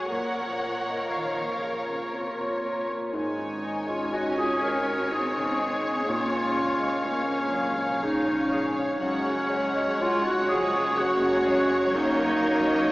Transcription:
Already playing: harp F#2 G#4 C#6, grand piano G#3 C#4 C#5, viola section C#5
0.09 cello section A#2, harp A#2, grand piano A#2, viola section F3, violin section A#4 C#5 F#5
0.38 grand piano A#3
0.64 grand piano C#5
0.89 grand piano D#5
1.10 cello section D#3, grand piano C#5, harp F5, violin section F5
1.38 grand piano A#3
1.61 cello section C#3, harp A#4, grand piano C#5
1.89 grand piano A#3
2.11 cello section C3, clarinet F4, french horn section C#5, grand piano C#5
2.38 grand piano A#3
2.62 cello section A#2, harp A#4
2.88 grand piano A#3
3.12 double bass section G#1, grand piano G#2, harp G#2, french horn section G#3, viola section G#3, clarinet D#4, violin section C#5 G#5
3.37 grand piano C#4
3.63 harp D#4, grand piano C#5
3.86 french horn section C#4, clarinet F4, grand piano D#5
4.11 cello section C#4, french horn section D#4, clarinet F#4, grand piano C#5, harp D#5
4.34 grand piano C#4, french horn section F4, clarinet G#4
4.58 french horn section F#4, grand piano C#5
4.62 harp G#4, clarinet A#4
4.86 grand piano C#4
5.08 cello section C4, french horn section D#4, grand piano D#4, harp D#4, clarinet G#4
5.36 grand piano C#3
5.59 harp G#4, grand piano D#5
5.84 grand piano C#4
6.07 double bass section A#1, harp A#2, grand piano A#2, cello section A#3, french horn section C#4, clarinet F4, violin section F5
6.32 grand piano C#4
6.56 harp C#3, cello section G#3, grand piano C#5
6.80 grand piano D#5
7.03 cello section A#3, french horn section A#3, clarinet C#4, grand piano C#5, harp C#6
7.29 grand piano C#4
7.53 cello section F#3, harp G#4, grand piano C#5
7.77 grand piano C#4
8.02 cello section F3, french horn section C#4, clarinet D#4, grand piano G#4
8.27 grand piano C#4
8.51 harp G#4, grand piano C#5
8.76 grand piano C#4
9.00 double bass section F#1, grand piano F#2, harp F#2, cello section F#3, french horn section G#3, viola section G#3, clarinet C#4, violin section C#5 F#5
9.26 grand piano C#4
9.50 grand piano C#5
9.74 grand piano D#5
9.99 cello section G#3, french horn section C#4, clarinet F4, grand piano C#5
10.23 grand piano C#4, french horn section D#4, clarinet F#4
10.48 french horn section F3, harp G#4, clarinet G#4, grand piano C#5
10.72 grand piano C#4
10.97 cello section A#3, french horn section C#4, clarinet F#4, grand piano G#4
11.23 grand piano C#4
11.45 cello section G#3, harp G#4, grand piano C#5
11.71 grand piano C#4
11.93 harp F#2, grand piano F#2, cello section F#3, viola section A#3, french horn section A#3, clarinet D#4, violin section D#5
12.19 grand piano A#3
12.41 harp A#3, grand piano C#5
12.66 grand piano D#5
12.89 cello section A#3

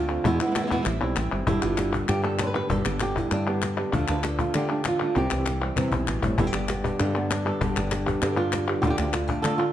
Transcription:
Already playing: fretless electric bass D2, nylon-string guitar D3 A3 C4 F4
0.09 nylon-string guitar A3 C4 F4, clap
0.25 fretless electric bass E2, nylon-string guitar B2 E3 G#3 B3 E4, muted nylon-string guitar stroke, cajon bass
0.40 nylon-string guitar E3 G#3 B3 E4, cajon slap, clap
0.47 nylon-string guitar E3 G#3 B3 E4
0.51 nylon-string guitar E3 G#3 B3 E4
0.55 nylon-string guitar B2 E3 G#3 B3 E4, cajon slap, clap
0.62 nylon-string guitar E3 G#3 B3 E4
0.67 nylon-string guitar E3 G#3 B3 E4
0.71 nylon-string guitar B2 E3 G#3 B3 E4, cajon bass, clap
0.77 nylon-string guitar E3 G3 C4 E4
0.82 nylon-string guitar E3 G3 C4 E4, clap
0.86 fretless electric bass A1, nylon-string guitar E3 G3 C4 E4, muted nylon-string guitar stroke
1.01 fretless electric bass B1, nylon-string guitar G3 C4 E4
1.16 fretless electric bass A1, nylon-string guitar E3 G3 C4 E4, muted nylon-string guitar stroke, cajon slap, clap
1.32 fretless electric bass G1, nylon-string guitar G3 C4 E4, clap
1.47 fretless electric bass G1, nylon-string guitar G2 B2 D3 G3 B3 D4 E4 G4, cajon bass
1.62 fretless electric bass G1, nylon-string guitar D3 G3 B3 F4 G4, clap
1.77 nylon-string guitar D3 G3 B3 G4, cajon slap, clap
1.93 nylon-string guitar G3, cajon bass, clap
2.08 fretless electric bass G2, nylon-string guitar D3 G4, muted nylon-string guitar stroke, clap
2.23 nylon-string guitar G3 B3 G4 A4
2.38 nylon-string guitar B4, cajon slap, clap
2.43 nylon-string guitar B4 C5
2.54 nylon-string guitar G3 B3 G4 B4
2.69 fretless electric bass G1, nylon-string guitar G2 B2 D3 G3 B3 G4 A4, cajon bass
2.85 fretless electric bass G1, nylon-string guitar D3 G3 B3 G4, clap
3.00 nylon-string guitar D3 G3 B3 G4, cajon slap, clap
3.16 nylon-string guitar E4, cajon bass, clap
3.31 fretless electric bass G2, nylon-string guitar D3 D4, muted nylon-string guitar stroke, clap
3.47 nylon-string guitar G3 B3 G4
3.62 cajon slap, clap
3.77 nylon-string guitar G3 B3 G4, clap
3.93 fretless electric bass D2, nylon-string guitar D3 A3 D4 F4 A4, cajon bass, clap
4.08 fretless electric bass D2, nylon-string guitar A3 D4 F4 B4, clap
4.23 nylon-string guitar A4, muted nylon-string guitar stroke, cajon slap, clap
4.39 nylon-string guitar A3 D4 F4, cajon bass, clap
4.54 nylon-string guitar D3 A3 D4 F4 G4, fretless electric bass D3, clap
4.69 nylon-string guitar A3 D4 F4
4.84 nylon-string guitar E3 F4, muted nylon-string guitar stroke, cajon slap, clap
5.00 nylon-string guitar D3 A3 D4 F4
5.15 fretless electric bass C2, nylon-string guitar C3 E3 G3 C4 E4 G4, cajon slap
5.30 fretless electric bass C2, nylon-string guitar E3 G3 C4 E4, cajon slap, clap
5.45 nylon-string guitar G3, muted nylon-string guitar stroke, cajon slap, clap
5.61 nylon-string guitar G3 C4 E4, clap
5.76 nylon-string guitar C3 E3 G3 C4 E4, fretless electric bass C3, cajon bass, clap
5.92 fretless electric bass B1, nylon-string guitar G3 C4 E4, cajon bass, clap
6.07 fretless electric bass A1, nylon-string guitar B2, muted nylon-string guitar stroke, clap
6.23 fretless electric bass G1, nylon-string guitar A2 G3 C4 E4, cajon bass
6.38 fretless electric bass G1, nylon-string guitar G2 B2 D3 G3 B3 E4 G4, cajon bass
6.47 nylon-string guitar G4
6.53 fretless electric bass G1, nylon-string guitar D3 G3 B3 G4, cajon slap, clap
6.69 nylon-string guitar B3, muted nylon-string guitar stroke, cajon slap, clap
6.84 nylon-string guitar G3 B3 D4 G4, cajon bass, clap
6.99 fretless electric bass G2, nylon-string guitar B2 D3 G3 B3 G4, clap
7.15 nylon-string guitar G3 B3 G4, clap
7.30 nylon-string guitar D4, muted nylon-string guitar stroke, cajon slap, clap
7.45 nylon-string guitar G3 B3 G4 A4, clap
7.61 fretless electric bass G1, nylon-string guitar G2 B2 D3 G3 B3 G4, cajon bass, clap
7.75 fretless electric bass G1, nylon-string guitar D3 G3 B3 G4, clap
7.91 muted nylon-string guitar stroke, cajon slap, clap
8.06 nylon-string guitar G3 B3 G4, cajon bass, clap
8.22 fretless electric bass G2, nylon-string guitar B2 D3 G3 B3 G4, clap
8.37 nylon-string guitar G3 B3 F4, clap
8.52 muted nylon-string guitar stroke, cajon slap, clap
8.68 nylon-string guitar G3 B3 G4, clap
8.82 fretless electric bass D2, nylon-string guitar D3 A3 D4 F4 G4, cajon bass
8.87 nylon-string guitar F4 G4
8.98 fretless electric bass D2, nylon-string guitar A3 D4 F4 G4, clap
9.13 nylon-string guitar F4, muted nylon-string guitar stroke, cajon slap, clap
9.28 nylon-string guitar A3 D4 F4 G4, cajon bass, clap
9.42 nylon-string guitar D3 A3 D4 F4 A4, fretless electric bass D3, clap
9.58 nylon-string guitar A3 D4 F4, clap

